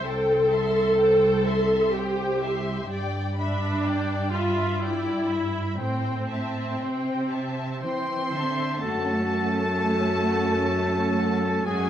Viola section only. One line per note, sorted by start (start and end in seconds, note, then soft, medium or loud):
0.05 1.91 A4 medium
1.96 2.90 G4 medium
3.37 4.29 D4 medium
4.33 4.82 F4 medium
4.82 5.81 E4 medium
5.80 8.29 C4 medium
8.82 11.64 A3 soft
8.82 11.64 C#4 soft
11.67 11.90 F#3 medium
11.67 11.90 C#4 medium